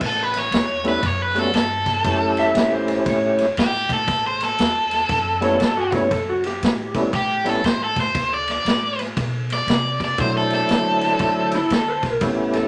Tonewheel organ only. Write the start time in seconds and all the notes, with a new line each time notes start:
0.84 G3 A3 B3 C#4 E4
1.35 G3 A3 B3 C#4 F#4
2.05 A3 C#4 E4 G4
5.41 G3 A3 B3 C#4 E4
5.91 G3 A3 B3 C#4 E4
6.94 G3 A3 B3 C#4 E4
7.44 G3 A3 B3 C#4 E4
10.18 F#3 A3 D4 E4 C5
12.21 A3 B3 C#4 E4 G4